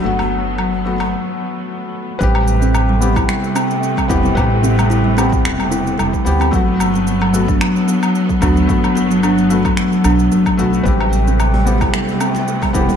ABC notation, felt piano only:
X:1
M:4/4
L:1/8
Q:"Swing 16ths" 1/4=111
K:Ador
V:1 name="Felt piano"
[A,B,F]3 [A,B,F] z4 | [CGB]3 [B,CG] z3 [B,CG] | [CGB]3 [B,CG] z3 [B,CG] | [A,B,F]3 [A,B,F] z3 [A,B,F] |
[A,B,F]3 [A,B,F] z3 [A,B,F] | [CGB]3 [B,CG] z3 [B,CG] |]